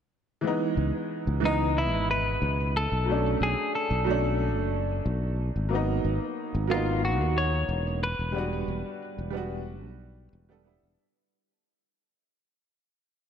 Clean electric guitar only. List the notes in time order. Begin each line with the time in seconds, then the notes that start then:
1.45 D#4
1.78 E4
2.11 B4
2.77 A4
3.43 G#4
3.75 A4
6.71 F4
7.05 F#4
7.38 C#5
8.03 B4